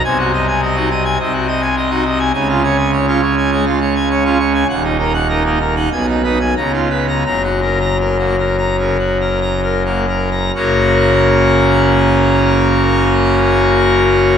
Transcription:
0.05 C2 C3 G#5
0.19 F#4
0.34 D#5
0.48 G#5
0.63 D#5
0.76 D#4 F#4
0.90 D#5
1.05 G#5
1.19 C2 C3 D#5
1.33 F#4
1.48 D#5
1.62 G#5
1.77 D#5
1.91 D#4 F#4
2.05 D#5
2.19 G#5
2.34 C#2 C#3 G#5
2.49 F4
2.64 C#5
2.77 G#5
2.93 C#5
3.08 C#4 F4
3.22 C#5
3.37 G#5
3.52 G#3 C#5
3.66 F4
3.82 C#5
3.96 G#5
4.11 C#5
4.25 C#4 F4
4.40 C#5
4.55 G#5
4.69 D#1 D#2 F#5
4.84 D#4
4.99 D#4 A#4
5.14 F#5
5.29 D#4 A#4
5.45 A#3 D#4
5.60 A#4
5.76 D#4 F#5
5.92 B1 B2 G#5
6.08 D#4
6.24 D#4 B4
6.40 G#5
6.57 C#2 C#3 A#5
6.73 F4
6.90 B4
7.08 A#5
7.26 F#1 F#2 A#5
7.44 F#4
7.62 A#4
7.81 A#5
8.00 A#4
8.19 A#3 F#4
8.38 A#4
8.58 A#5
8.79 C#3 A#4
8.99 F#4
9.21 A#4
9.42 A#5
9.63 A#4
9.85 A#3 F#4
10.09 A#4
10.31 A#5
10.55 F#1 F#2 C#3 A#3 C#4 F#4 A#4

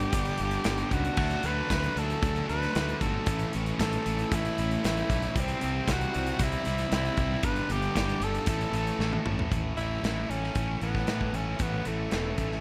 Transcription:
Already playing: G2 D3 G3 B3 D4 G4
0.00 closed hi-hat
0.12 G1 G2 D3 G3 B3 D4 G4, kick, closed hi-hat
0.25 closed hi-hat
0.38 G1 G2 D3 G3 B3 D4 G4, closed hi-hat
0.51 closed hi-hat
0.64 G1 G2 D3 G3 B3 D4 G4, snare, closed hi-hat
0.78 snare, closed hi-hat
0.91 C#2 G2 D3 G3 B3 D4 F#4 G4, kick, closed hi-hat
1.05 closed hi-hat
1.17 D2 D3 F#3 A3 D4 F#4, kick, crash
1.30 closed hi-hat
1.43 D2 D3 A3 D4 F#4 B4, closed hi-hat
1.69 D2 D3 A3 D4 F#4, kick, snare, closed hi-hat
1.83 closed hi-hat
1.96 D2 D3 A3 D4 F#4 A4, closed hi-hat
2.10 closed hi-hat
2.22 D2 D3 F#3 A3 D4 F#4, kick, closed hi-hat
2.36 closed hi-hat
2.48 D2 D3 A3 D4 F#4 B4, closed hi-hat
2.63 snare, closed hi-hat
2.75 D2 D3 A3 D4 F#4, snare, closed hi-hat
2.89 closed hi-hat
3.01 G1 D3 A3 D4 F#4 A4, kick, closed hi-hat
3.26 A1 A2 E3 A3 C#4 E4, kick, closed hi-hat
3.39 closed hi-hat
3.52 A1 A2 E3 A3 C#4 E4, closed hi-hat
3.66 closed hi-hat
3.78 A1 A2 E3 A3 C#4 E4 A4, kick, snare, closed hi-hat
3.93 closed hi-hat
4.04 A1 A2 E3 A3 C#4 E4, closed hi-hat
4.19 closed hi-hat
4.31 A1 A2 E3 A3 C#4 E4, kick, closed hi-hat
4.45 closed hi-hat
4.58 A1 A2 E3 A3 C#4 E4, closed hi-hat
4.71 closed hi-hat
4.83 A1 A2 E3 A3 C#4 E4, snare, closed hi-hat
4.97 snare, closed hi-hat
5.09 B1 A2 E3 A3 C#4 E4, kick, closed hi-hat
5.22 closed hi-hat
5.34 C2 C3 E3 G3 C4 E4, kick, closed hi-hat
5.40 C4
5.48 closed hi-hat
5.60 C2 C3 E3 G3 C4 E4, closed hi-hat
5.87 C2 C3 E3 G3 C4 E4, kick, snare, closed hi-hat
5.92 F#4
6.01 closed hi-hat
6.13 C2 C3 E3 G3 C4 E4, closed hi-hat
6.27 closed hi-hat
6.39 C2 C3 E3 G3 C4 E4, kick, closed hi-hat
6.43 E4
6.52 closed hi-hat
6.65 C2 C3 E3 G3 C4 E4, closed hi-hat
6.78 snare, closed hi-hat
6.90 C2 C3 E3 G3 C4 E4, snare, closed hi-hat
6.95 E4
7.05 closed hi-hat
7.17 C2 C3 E3 G3 C4 E4, kick, closed hi-hat
7.43 G1 G2 D3 G3 B3 D4 G4 B4, kick, closed hi-hat
7.56 closed hi-hat
7.69 G1 G2 D3 G3 B3 D4 G4, closed hi-hat
7.82 closed hi-hat
7.95 G1 G2 D3 G3 B3 D4 G4, kick, snare, closed hi-hat
8.09 closed hi-hat
8.20 G1 G2 D3 G3 B3 D4 G4 A4, closed hi-hat
8.35 closed hi-hat
8.46 A1 A2 E3 A3 C#4 E4 A4, kick, closed hi-hat
8.61 closed hi-hat
8.72 A1 A2 E3 A3 C#4 A4, closed hi-hat
8.87 closed hi-hat
8.99 A1 A2 E3 A3 C#4 A4, snare
9.13 high tom
9.25 A1 A2 E3 A3 C#4 A4, mid tom
9.39 floor tom
9.50 A1 A2 E3 A3 C#4 E4, kick, closed hi-hat
9.76 A1 A2 E3 A3 C#4 E4, closed hi-hat
10.02 A1 A2 E3 A3 C#4 E4, snare, closed hi-hat
10.29 A1 A2 E3 A3 C#4 E4, closed hi-hat
10.44 snare
10.54 A1 A2 E3 A3 C#4 E4, kick, closed hi-hat
10.81 A1 A2 E3 A3 B3 C#4 E4, closed hi-hat
10.95 kick, snare
11.07 A2 E3 A3 C#4 E4, snare, closed hi-hat
11.21 kick
11.32 A1 A2 E3 A3 C#4 E4, closed hi-hat
11.59 A1 A2 E3 A3 B3 C#4 E4, kick, closed hi-hat
11.84 A1 A2 E3 A3 C#4 E4, closed hi-hat
12.11 E1 A2 E3 A3 C#4 E4, snare, closed hi-hat
12.37 A1 A2 E3 A3 C#4 E4, kick, closed hi-hat
12.52 snare

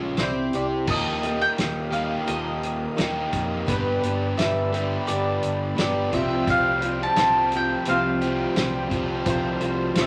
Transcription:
Already playing: A#1 C#3 G#3 C#4 F4 G#4 F5 C#6
0.17 C2 C4 E4 G4 C5 D5 E5 D6, snare, closed hi-hat
0.23 C5
0.53 C2 G4 D5, closed hi-hat
0.87 D#2 D#3 F3 G3 A#3 D#4 G4 D#5 F5 D#6, kick, crash
0.92 G4
1.23 A#3 D#4 G4 D#5, closed hi-hat
1.41 G5
1.56 D#2 A#3 D#4 G4 D#5, snare, closed hi-hat
1.91 D#3 G3 A#3 D#4 G4 F5, closed hi-hat
2.26 D#2 D#3 F3 A#3 D#4 G4 D#5, closed hi-hat
2.63 closed hi-hat
2.96 D#2 D#3 G3 A#3 D#4 G4 D#5, snare, closed hi-hat
3.01 G4
3.33 F2, kick, closed hi-hat
3.66 G1 G2 D3 G3 B3 D4 G4 B4 D5 B5, kick, closed hi-hat
3.70 G4 B4
4.01 G1 D4 G4 B4, closed hi-hat
4.37 G1 B3 D4 G4 B4 E5, snare, closed hi-hat
4.72 G2 D3 G3 B3 D4 G4 B4, closed hi-hat
5.07 G1 G3 B3 D4 G4 B4 D5, closed hi-hat
5.43 G1, closed hi-hat
5.75 G1 G2 D3 G3 B3 D4 G4 B4, snare, closed hi-hat
5.79 G4 D5
6.10 C2 C3 F3 G3 F4 G4 C5, kick, closed hi-hat
6.14 C3 F3 C4 F4 G4 C5 E5 G5
6.47 C2 F4 G4 C5 F5, kick, closed hi-hat
6.82 C4 F4 G4 C5, closed hi-hat
7.03 A5
7.16 C2 C3 F3 G3 C4 F4 G4 C5, snare, closed hi-hat
7.51 C4 F4 G4 C5, closed hi-hat
7.56 G5
7.85 C2 C3 F3 C4 F4 G4 C5 F5, closed hi-hat
8.21 F3 G3 F4 G4, closed hi-hat
8.26 C3
8.55 C2 C4 F4 G4 C5, snare, closed hi-hat
8.89 C2 C3 F3 G3 F4 A5, kick, closed hi-hat
8.93 G4
9.25 C2 C3 F3 C4 F4 G4 C5, kick, closed hi-hat
9.30 C5
9.60 C2 C4 F4 G4 C5, closed hi-hat
9.95 C2 C3 F3 G3 C4 F4 G4 C5, snare, closed hi-hat
9.99 G4 E5

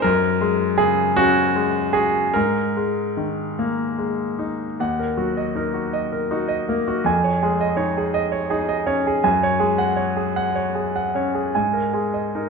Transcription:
0.02 F#2 A#4
0.41 G#3
0.78 C#3 G#4
1.17 C#4 F#4
1.56 G#3
1.93 F#4 G#4
2.34 G#2 A#4
2.77 G#3
3.17 D#3
3.59 A#3
3.98 G#3
4.39 D#4
4.80 D#2 F#5
4.99 A#4
5.17 F#3 F#4
5.37 D#5
5.55 D#4 A#4
5.74 F#4
5.93 D#5
6.12 A#4
6.31 D#4 F#4
6.48 D#5
6.69 A#3 A#4
6.88 F#4
7.04 F2 G#5
7.24 C#5
7.43 G#3 G#4
7.61 D#5
7.77 D#4 C#5
7.97 G#4
8.14 D#5
8.32 C#5
8.50 D#4 G#4
8.69 D#5
8.87 C#4 C#5
9.07 G#4
9.24 F#2 G#5
9.43 C#5
9.59 G#3 G#4
9.78 F#5
9.96 C#5
10.17 G#4
10.36 F#5
10.55 C#5
10.75 G#4
10.96 F#5
11.15 C#4 C#5
11.35 G#4
11.55 G#2 G#5
11.73 A#4
11.93 G#3 G#4
12.14 D#5
12.35 D#4 A#4

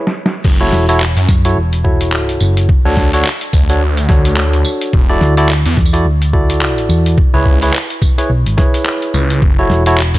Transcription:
0.07 snare
0.26 snare
0.44 F#1, kick, crash
0.61 E4 F#4 A4 C#5
0.72 E1, snare
0.89 E4 F#4 A4 C#5, closed hi-hat
1.00 clap
1.17 F#2, closed hi-hat
1.29 F#2, kick, snare, tambourine
1.45 E4 F#4 A4 C#5, closed hi-hat
1.56 E1
1.73 closed hi-hat
1.85 E4 F#4 A4 C#5, kick
2.01 closed hi-hat
2.12 clap
2.29 closed hi-hat
2.40 F#1, tambourine
2.57 closed hi-hat
2.69 kick
2.85 D2 D4 F#4 A4 C#5
2.97 kick, snare
3.13 D4 F#4 A4 C#5, closed hi-hat
3.25 clap
3.41 closed hi-hat
3.53 D2, kick, tambourine
3.70 D4 F#4 A4 C#5, closed hi-hat
3.97 closed hi-hat
4.09 D2 D4 F#4 A4 C#5, kick, snare
4.25 closed hi-hat
4.37 clap
4.53 closed hi-hat
4.65 tambourine
4.81 closed hi-hat
4.93 E1, kick
5.09 E4 F#4 A4 D5
5.21 D2, snare
5.37 E4 F#4 A4 D5, closed hi-hat
5.49 clap
5.66 E2, closed hi-hat
5.77 E2, kick, snare
5.86 tambourine
5.93 E4 F#4 A4 D5, closed hi-hat
6.05 D2
6.22 closed hi-hat
6.33 E4 F#4 A4 D5, kick
6.50 closed hi-hat
6.61 clap
6.78 closed hi-hat
6.89 E2, tambourine
7.06 closed hi-hat
7.18 kick
7.34 C#2 E4 G#4 B4 C#5
7.46 kick
7.62 E4 G#4 B4 C#5, closed hi-hat
7.74 clap
7.90 closed hi-hat
8.02 kick, tambourine
8.18 E4 G#4 B4 C#5, closed hi-hat
8.30 B1
8.46 G#1, closed hi-hat
8.58 E4 G#4 B4 C#5, kick, snare
8.74 closed hi-hat
8.86 clap
9.02 closed hi-hat
9.14 C#2, tambourine
9.30 closed hi-hat
9.42 F#1, kick
9.59 E4 F#4 A4 C#5
9.70 E1, snare
9.86 E4 F#4 A4 C#5, closed hi-hat
9.98 clap
10.14 F#2, closed hi-hat

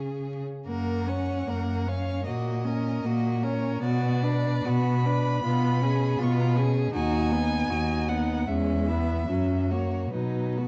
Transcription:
Already playing: C#3 C#4 G#4
0.67 F#2 A#3 A#4 F#5
1.07 C#4 C#5
1.47 F#2 A#3 A#4
1.87 C#4 C#5 F5
2.25 A#2 A#3 F#4 D#5
2.64 C#4 A#4
3.04 A#2 A#3 F#4
3.43 C#4 A#4 C#5
3.81 B2 B3 F#4 D5
4.23 D4 B4
4.64 B2 B3 F#4 B5
5.05 D4 B4
5.43 B2 B3 F4
5.82 C#4 G#4
6.19 B2 B3 F4
6.23 C#6
6.32 B5
6.40 A#5
6.48 B5
6.56 C#4 G#4
6.93 D#2 D#4 F#4 G#5
7.31 B3 D#4
7.69 D#2 D#4 F#4
8.09 B3 D#4 F#5
8.47 E2 G#3 C#4 E5
8.88 B3 E4
9.28 F#2 F#3 C#4
9.70 A#3 F#4 C#5
10.12 B2 F#3 D#4 B4
10.58 B3 F#4

